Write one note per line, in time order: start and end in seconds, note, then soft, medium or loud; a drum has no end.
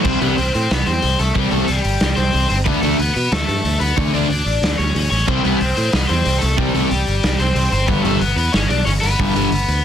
0.03 0.17 C2 medium
0.03 0.18 C3 medium
0.03 0.18 G3 loud
0.03 0.20 C4 medium
0.03 0.19 C4 loud
0.03 0.20 C5 medium
0.03 kick loud
0.03 crash loud
0.20 0.33 C2 medium
0.20 0.35 C3 medium
0.20 0.35 G3 medium
0.20 0.36 B3 medium
0.20 0.35 C4 loud
0.20 0.35 B4 medium
0.20 open hi-hat medium
0.35 0.49 C2 medium
0.35 0.53 C4 medium
0.35 0.53 C5 medium
0.35 open hi-hat medium
0.54 0.66 A2 medium
0.54 0.70 C4 medium
0.54 0.71 C5 medium
0.54 open hi-hat medium
0.71 0.83 C2 medium
0.71 0.87 B3 medium
0.71 0.86 B4 medium
0.71 snare loud
0.71 open hi-hat medium
0.86 0.99 E2 medium
0.86 1.18 C4 medium
0.86 1.20 C5 medium
0.86 open hi-hat medium
1.02 1.15 C2 medium
1.02 open hi-hat medium
1.19 1.31 C2 medium
1.19 1.35 A3 medium
1.19 1.34 A4 medium
1.19 open hi-hat medium
1.34 1.47 C2 medium
1.34 1.49 C3 medium
1.34 1.51 G3 medium
1.34 1.49 G3 loud
1.34 1.49 C4 medium
1.34 1.50 G4 medium
1.34 kick loud
1.34 open hi-hat medium
1.50 1.64 C2 medium
1.50 1.65 C3 loud
1.50 1.65 G3 loud
1.50 1.67 A3 medium
1.50 1.65 C4 loud
1.50 1.66 A4 medium
1.50 open hi-hat medium
1.67 1.80 C2 medium
1.67 2.14 G3 medium
1.67 2.18 G4 medium
1.67 open hi-hat medium
1.84 1.97 G1 medium
1.84 open hi-hat medium
2.00 2.13 C2 medium
2.00 snare loud
2.00 open hi-hat medium
2.16 2.29 C2 medium
2.16 2.48 C4 medium
2.16 2.48 C5 loud
2.16 open hi-hat medium
2.33 2.46 C2 medium
2.33 open hi-hat medium
2.49 2.68 G1 medium
2.49 2.56 C4 medium
2.49 2.54 C5 medium
2.49 open hi-hat medium
2.65 2.78 D2 medium
2.65 2.79 D3 loud
2.65 2.80 A3 medium
2.65 2.82 B3 medium
2.65 2.80 D4 loud
2.65 2.81 B4 loud
2.65 kick loud
2.65 open hi-hat medium
2.81 2.94 D2 medium
2.81 2.96 D3 loud
2.81 2.96 A3 loud
2.81 2.98 A3 medium
2.81 2.96 D4 loud
2.81 2.97 A4 medium
2.81 open hi-hat medium
2.99 3.11 D2 medium
2.99 3.15 B3 medium
2.99 3.13 B4 loud
2.99 open hi-hat medium
3.15 3.28 B2 medium
3.15 3.32 B3 medium
3.15 3.32 B4 loud
3.15 open hi-hat medium
3.32 3.44 D2 medium
3.32 3.48 A3 medium
3.32 3.45 A4 loud
3.32 snare loud
3.32 open hi-hat medium
3.47 3.60 G2 medium
3.47 3.79 A3 medium
3.47 3.79 A4 loud
3.47 open hi-hat medium
3.64 3.76 D2 medium
3.64 open hi-hat medium
3.80 3.92 D2 medium
3.80 3.97 B3 medium
3.80 3.96 B4 loud
3.80 open hi-hat medium
3.97 4.09 D2 medium
3.97 4.10 D3 medium
3.97 4.10 A3 loud
3.97 4.14 C#4 medium
3.97 4.10 D4 loud
3.97 4.12 C#5 loud
3.97 kick loud
3.97 open hi-hat medium
4.12 4.25 D2 medium
4.12 4.26 D3 medium
4.12 4.27 A3 loud
4.12 4.27 D4 loud
4.12 4.29 D4 medium
4.12 4.29 D5 loud
4.12 open hi-hat medium
4.30 4.41 D2 medium
4.30 4.77 D4 medium
4.30 4.77 D5 loud
4.30 open hi-hat medium
4.46 4.58 A1 medium
4.46 open hi-hat medium
4.62 4.74 D2 medium
4.62 snare medium
4.62 open hi-hat medium
4.78 4.91 D2 medium
4.78 5.10 C#4 medium
4.78 5.09 C#5 loud
4.78 open hi-hat medium
4.95 5.07 D2 medium
4.95 open hi-hat medium
5.10 5.23 A1 medium
5.10 5.28 C#4 medium
5.10 5.27 C#5 loud
5.10 open hi-hat medium
5.28 5.40 C2 medium
5.28 5.41 C3 medium
5.28 5.41 G3 loud
5.28 5.41 C4 loud
5.28 5.44 C4 medium
5.28 5.43 C5 medium
5.28 kick loud
5.28 crash medium
5.43 5.56 C2 medium
5.43 5.57 C3 medium
5.43 5.58 G3 loud
5.43 5.60 B3 medium
5.43 5.58 C4 loud
5.43 5.58 B4 medium
5.43 open hi-hat medium
5.58 5.72 C2 medium
5.58 5.76 C4 medium
5.58 5.75 C5 loud
5.58 open hi-hat medium
5.76 5.89 A2 medium
5.76 5.92 C4 medium
5.76 5.92 C5 loud
5.76 open hi-hat medium
5.92 6.05 C2 medium
5.92 6.09 B3 medium
5.92 6.07 B4 loud
5.92 snare loud
5.92 open hi-hat medium
6.07 6.22 E2 medium
6.07 6.40 C4 medium
6.07 6.42 C5 loud
6.07 open hi-hat medium
6.26 6.38 C2 medium
6.26 open hi-hat medium
6.38 6.57 A3 medium
6.38 6.57 A4 medium
6.38 open hi-hat medium
6.43 6.54 C2 medium
6.57 6.70 C2 medium
6.57 6.72 C3 medium
6.57 6.72 G3 loud
6.57 6.74 G3 medium
6.57 6.72 C4 loud
6.57 6.73 G4 medium
6.57 kick loud
6.57 open hi-hat medium
6.73 6.86 C2 medium
6.73 6.88 C3 medium
6.73 6.88 G3 loud
6.73 6.91 A3 medium
6.73 6.88 C4 loud
6.73 6.88 A4 medium
6.73 open hi-hat medium
6.89 7.03 C2 loud
6.89 7.37 G3 medium
6.89 7.40 G4 medium
6.89 open hi-hat medium
7.07 7.19 G1 medium
7.07 open hi-hat medium
7.23 7.35 C2 medium
7.23 snare loud
7.23 open hi-hat medium
7.39 7.51 C2 medium
7.39 7.71 C4 medium
7.39 7.70 C5 loud
7.39 open hi-hat medium
7.55 7.67 C2 medium
7.55 open hi-hat medium
7.72 7.88 G1 medium
7.72 7.89 C4 medium
7.72 7.86 C5 medium
7.72 open hi-hat medium
7.86 8.00 G1 medium
7.86 8.02 G2 loud
7.86 8.02 D3 medium
7.86 8.02 G3 loud
7.86 8.04 B3 medium
7.86 8.02 B4 loud
7.86 kick loud
7.86 open hi-hat medium
8.02 8.16 G1 medium
8.02 8.18 G2 loud
8.02 8.18 D3 medium
8.02 8.18 G3 loud
8.02 8.20 A3 medium
8.02 8.19 A4 medium
8.02 open hi-hat medium
8.19 8.32 G1 loud
8.19 8.37 B3 medium
8.19 8.36 B4 loud
8.19 open hi-hat medium
8.36 8.48 E2 medium
8.36 8.54 B3 medium
8.36 8.52 B4 medium
8.36 open hi-hat medium
8.52 8.66 G1 medium
8.52 8.69 C#4 medium
8.52 8.68 C#5 loud
8.52 snare loud
8.52 open hi-hat medium
8.68 8.82 B1 medium
8.68 8.85 D4 medium
8.68 8.85 D5 medium
8.68 open hi-hat medium
8.85 8.98 G1 medium
8.85 8.91 C#4 medium
8.85 8.90 C#5 medium
8.85 open hi-hat medium
9.01 9.15 G1 medium
9.01 9.85 B3 medium
9.01 9.85 B4 medium
9.01 open hi-hat medium
9.19 9.33 G2 medium
9.19 9.33 D3 loud
9.19 9.33 G3 loud
9.19 kick loud
9.19 open hi-hat medium
9.35 9.47 G1 medium
9.35 9.48 G2 medium
9.35 9.49 D3 loud
9.35 9.49 G3 loud
9.35 open hi-hat medium
9.52 9.64 G1 loud
9.52 open hi-hat medium
9.68 9.80 D2 loud
9.68 open hi-hat medium